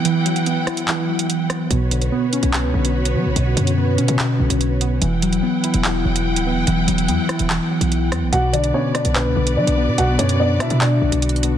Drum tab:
HH |x-----x--x--x-----x--x-----------x--x-----x-----|x-----x--x--------x--x-----------x-----x--------|x-----x--x--------x--x-----------x--x-----x-----|x-----x--x--------x--x-----------x-----x--------|
CP |------------------------x-----------------------|------------------------x-----------------------|------------------------x-----------------------|------------------------x-----------------------|
SD |------------------r-----------------------r-----|------------------------------------------------|------------------------------------------------|------------------------------------------------|

HH |x-----x--x--x-----x--x-----------x--x-----x-----|x-----x--x--------x--x-----------x-----x--------|x-----x--x--------x--x-----------x--x-x-x-x-----|
CP |------------------------x-----------------------|------------------------x-----------------------|------------------------x-----------------------|
SD |------------------r-----------------------r-----|------------------r-----------------------------|------------------r-----------------------------|